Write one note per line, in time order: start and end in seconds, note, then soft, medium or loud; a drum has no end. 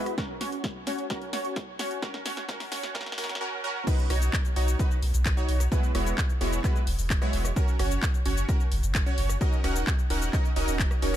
0.00 0.15 G#3 medium
0.00 0.15 B3 medium
0.00 0.15 E4 medium
0.00 0.15 F#4 medium
0.00 0.15 B4 loud
0.06 cross-stick medium
0.06 closed hi-hat medium
0.18 0.38 C#4 medium
0.18 0.38 F#4 medium
0.18 0.38 A#4 loud
0.18 kick loud
0.18 snare medium
0.18 closed hi-hat medium
0.41 0.67 C#4 medium
0.41 0.67 F#4 medium
0.41 0.67 C#5 medium
0.41 snare medium
0.41 open hi-hat loud
0.52 closed hi-hat medium
0.64 kick loud
0.64 snare medium
0.64 closed hi-hat medium
0.87 1.07 C#4 medium
0.87 1.07 F#4 medium
0.87 1.07 C#5 medium
0.87 snare medium
0.87 open hi-hat loud
0.98 closed hi-hat medium
1.10 1.30 C#4 medium
1.10 1.30 F#4 medium
1.10 1.30 A#4 loud
1.10 kick loud
1.10 snare medium
1.10 closed hi-hat medium
1.22 closed hi-hat soft
1.33 1.60 C#4 medium
1.33 1.59 F#4 medium
1.33 1.60 C#5 medium
1.33 snare medium
1.33 open hi-hat loud
1.45 closed hi-hat soft
1.56 kick loud
1.56 snare medium
1.56 closed hi-hat medium
1.79 2.00 C#4 medium
1.79 2.00 F#4 medium
1.79 2.00 C#5 medium
1.79 snare medium
1.79 open hi-hat loud
1.91 closed hi-hat medium
2.02 2.23 C#4 loud
2.02 2.23 F#4 medium
2.02 2.23 A#4 loud
2.02 kick loud
2.02 snare medium
2.02 closed hi-hat medium
2.14 snare medium
2.25 2.47 C#4 medium
2.25 2.47 F#4 medium
2.25 2.47 C#5 medium
2.25 snare medium
2.25 open hi-hat loud
2.37 snare medium
2.37 closed hi-hat soft
2.49 2.69 C#4 loud
2.49 2.69 F#4 medium
2.49 2.69 A#4 loud
2.49 kick loud
2.49 snare loud
2.49 closed hi-hat medium
2.60 snare medium
2.60 open hi-hat medium
2.72 2.93 C#4 medium
2.72 2.93 F#4 medium
2.72 2.93 C#5 medium
2.72 snare loud
2.72 open hi-hat loud
2.83 snare medium
2.83 closed hi-hat soft
2.95 3.15 C#4 loud
2.95 3.15 F#4 medium
2.95 3.15 A#4 loud
2.95 kick loud
2.95 snare loud
2.95 closed hi-hat medium
3.01 snare medium
3.06 snare medium
3.06 closed hi-hat soft
3.12 snare medium
3.18 3.38 C#4 loud
3.18 3.38 F#4 medium
3.18 3.38 A#4 loud
3.18 snare loud
3.18 open hi-hat loud
3.24 snare medium
3.29 snare medium
3.29 closed hi-hat soft
3.35 snare medium
3.41 3.61 C#4 loud
3.41 3.61 F#4 loud
3.41 3.61 A#4 loud
3.64 3.84 C#4 loud
3.64 3.84 F#4 medium
3.64 3.84 A#4 loud
3.87 4.07 D#4 medium
3.87 4.07 F#4 medium
3.87 4.07 B4 loud
3.87 kick loud
3.87 closed hi-hat medium
3.87 crash loud
3.87 shaker medium
3.99 closed hi-hat soft
3.99 shaker soft
4.10 4.29 B1 loud
4.10 4.36 D#4 medium
4.10 4.37 F#4 medium
4.10 4.36 C#5 medium
4.10 cross-stick medium
4.10 open hi-hat loud
4.22 closed hi-hat medium
4.22 shaker medium
4.33 kick loud
4.33 clap loud
4.33 closed hi-hat medium
4.33 shaker medium
4.45 closed hi-hat soft
4.45 shaker soft
4.56 4.75 B1 medium
4.56 4.77 D#4 medium
4.56 4.77 F#4 medium
4.56 4.77 C#5 medium
4.56 open hi-hat loud
4.68 closed hi-hat medium
4.68 shaker medium
4.79 4.96 D#4 medium
4.79 4.96 F#4 medium
4.79 4.96 B4 medium
4.79 kick loud
4.79 closed hi-hat medium
4.79 shaker medium
4.91 closed hi-hat soft
4.91 shaker soft
5.03 5.12 B1 medium
5.03 open hi-hat loud
5.14 5.33 B1 loud
5.14 closed hi-hat medium
5.14 shaker medium
5.26 kick loud
5.26 clap loud
5.26 closed hi-hat medium
5.26 shaker medium
5.37 5.63 D#4 loud
5.37 5.63 F#4 medium
5.37 5.63 C#5 loud
5.37 closed hi-hat soft
5.37 shaker soft
5.49 5.68 B1 medium
5.49 open hi-hat loud
5.60 cross-stick medium
5.60 closed hi-hat medium
5.60 shaker medium
5.72 5.92 G#3 loud
5.72 5.92 B3 medium
5.72 5.92 E4 medium
5.72 5.92 F#4 medium
5.72 5.92 B4 loud
5.72 kick loud
5.72 closed hi-hat medium
5.72 shaker medium
5.83 closed hi-hat soft
5.83 shaker soft
5.95 6.14 E1 loud
5.95 6.21 G#3 medium
5.95 6.21 B3 medium
5.95 6.21 E4 medium
5.95 6.21 F#4 medium
5.95 6.21 C#5 medium
5.95 cross-stick medium
5.95 open hi-hat loud
6.06 closed hi-hat medium
6.06 shaker medium
6.18 kick loud
6.18 clap loud
6.18 closed hi-hat medium
6.18 shaker medium
6.29 closed hi-hat soft
6.29 shaker soft
6.41 6.60 E1 medium
6.41 6.61 G#3 medium
6.41 6.61 B3 medium
6.41 6.61 E4 medium
6.41 6.61 F#4 medium
6.41 6.61 C#5 medium
6.41 open hi-hat loud
6.52 closed hi-hat medium
6.52 shaker medium
6.64 6.80 G#3 medium
6.64 6.80 B3 medium
6.64 6.80 E4 medium
6.64 6.80 F#4 medium
6.64 6.80 B4 medium
6.64 kick loud
6.64 clap soft
6.64 closed hi-hat medium
6.64 shaker medium
6.76 closed hi-hat soft
6.76 shaker soft
6.87 6.97 E1 medium
6.87 open hi-hat loud
6.99 7.18 E1 loud
6.99 open hi-hat medium
6.99 shaker medium
7.10 kick loud
7.10 clap loud
7.10 closed hi-hat medium
7.10 shaker medium
7.22 7.48 G#3 loud
7.22 7.48 B3 medium
7.22 7.48 E4 medium
7.22 7.48 F#4 medium
7.22 7.48 C#5 loud
7.22 cross-stick medium
7.22 closed hi-hat soft
7.22 shaker soft
7.33 7.52 E1 medium
7.33 open hi-hat loud
7.45 cross-stick medium
7.45 closed hi-hat medium
7.45 shaker medium
7.56 7.77 C#4 medium
7.56 7.77 F#4 medium
7.56 7.77 A#4 loud
7.56 kick loud
7.56 closed hi-hat medium
7.56 shaker medium
7.68 closed hi-hat soft
7.68 shaker soft
7.79 7.98 F#1 loud
7.79 8.06 C#4 medium
7.79 8.06 F#4 medium
7.79 8.06 C#5 medium
7.79 cross-stick medium
7.79 open hi-hat loud
7.91 closed hi-hat medium
7.91 shaker medium
8.03 kick loud
8.03 clap loud
8.03 closed hi-hat medium
8.03 shaker medium
8.14 closed hi-hat soft
8.14 shaker soft
8.26 8.45 F#1 medium
8.26 8.46 C#4 medium
8.26 8.46 F#4 medium
8.26 8.46 C#5 medium
8.26 open hi-hat loud
8.37 closed hi-hat medium
8.37 shaker medium
8.49 8.65 C#4 medium
8.49 8.65 F#4 medium
8.49 8.65 A#4 medium
8.49 kick loud
8.49 closed hi-hat medium
8.49 shaker medium
8.60 closed hi-hat soft
8.60 shaker soft
8.72 8.81 F#1 medium
8.72 open hi-hat loud
8.83 9.02 F#1 loud
8.83 closed hi-hat medium
8.83 shaker medium
8.95 kick loud
8.95 clap loud
8.95 closed hi-hat medium
8.95 shaker medium
9.06 9.33 C#4 loud
9.06 9.33 F#4 medium
9.06 9.33 C#5 loud
9.06 closed hi-hat soft
9.06 shaker soft
9.18 9.37 F#1 medium
9.18 open hi-hat loud
9.29 cross-stick medium
9.29 closed hi-hat medium
9.29 shaker medium
9.41 9.61 C#4 loud
9.41 9.61 D#4 medium
9.41 9.61 F#4 medium
9.41 9.61 A#4 medium
9.41 9.61 D#5 loud
9.41 kick loud
9.41 closed hi-hat medium
9.41 shaker medium
9.53 closed hi-hat soft
9.53 shaker soft
9.64 9.83 D#1 loud
9.64 9.90 C#4 medium
9.64 9.90 D#4 medium
9.64 9.90 F#4 medium
9.64 9.90 A#4 medium
9.64 9.90 F#5 medium
9.64 cross-stick medium
9.64 open hi-hat loud
9.76 closed hi-hat medium
9.76 shaker medium
9.87 kick loud
9.87 clap loud
9.87 closed hi-hat medium
9.87 shaker medium
9.99 closed hi-hat soft
9.99 shaker soft
10.10 10.29 D#1 medium
10.10 10.31 C#4 medium
10.10 10.31 D#4 medium
10.10 10.31 F#4 medium
10.10 10.31 A#4 medium
10.10 10.31 F#5 medium
10.10 open hi-hat loud
10.22 closed hi-hat medium
10.22 shaker medium
10.33 10.50 C#4 medium
10.33 10.50 D#4 medium
10.33 10.50 F#4 medium
10.33 10.50 A#4 medium
10.33 10.50 D#5 medium
10.33 kick loud
10.33 clap soft
10.33 closed hi-hat soft
10.33 shaker medium
10.45 closed hi-hat soft
10.45 shaker soft
10.56 10.66 D#1 medium
10.56 11.00 C#4 loud
10.56 11.00 D#4 medium
10.56 11.00 F#4 medium
10.56 11.00 A#4 medium
10.56 11.00 D#5 loud
10.56 open hi-hat loud
10.68 10.87 D#1 medium
10.68 open hi-hat medium
10.68 shaker medium
10.79 kick loud
10.79 clap loud
10.79 closed hi-hat soft
10.79 shaker medium
10.91 cross-stick medium
10.91 closed hi-hat soft
10.91 shaker soft
11.02 11.17 D#1 loud
11.02 11.17 C#4 medium
11.02 11.17 D#4 medium
11.02 11.17 F#4 medium
11.02 11.17 A#4 medium
11.02 11.17 C#5 medium
11.02 open hi-hat loud